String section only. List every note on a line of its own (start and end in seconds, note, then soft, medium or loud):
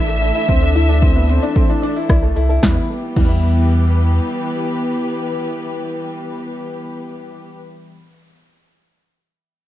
0.00 2.62 E3 medium
0.00 2.63 A3 medium
0.00 2.63 D4 medium
0.00 2.63 A4 medium
2.63 7.36 E3 medium
2.71 7.44 B3 medium
2.79 7.52 G4 medium
2.88 7.61 B4 medium